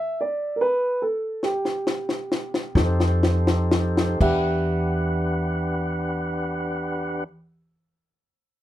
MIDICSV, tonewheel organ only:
0, 0, Header, 1, 2, 480
1, 0, Start_track
1, 0, Key_signature, 1, "minor"
1, 0, Tempo, 820793
1, 832, Tempo, 898204
1, 1792, Tempo, 985222
1, 2272, Time_signature, 12, 3, 24, 8
1, 2272, Tempo, 1020408
1, 4350, End_track
2, 0, Start_track
2, 0, Title_t, "Tonewheel organ"
2, 0, Program_c, 0, 16
2, 1549, Note_on_c, 0, 63, 69
2, 1549, Note_on_c, 0, 69, 64
2, 1549, Note_on_c, 0, 72, 67
2, 1550, Note_on_c, 0, 67, 69
2, 2268, Note_off_c, 0, 63, 0
2, 2268, Note_off_c, 0, 67, 0
2, 2268, Note_off_c, 0, 69, 0
2, 2268, Note_off_c, 0, 72, 0
2, 2275, Note_on_c, 0, 67, 71
2, 2276, Note_on_c, 0, 78, 69
2, 2278, Note_on_c, 0, 62, 70
2, 2278, Note_on_c, 0, 71, 66
2, 3698, Note_off_c, 0, 67, 0
2, 3698, Note_off_c, 0, 78, 0
2, 3700, Note_off_c, 0, 71, 0
2, 3701, Note_off_c, 0, 62, 0
2, 4350, End_track
0, 0, End_of_file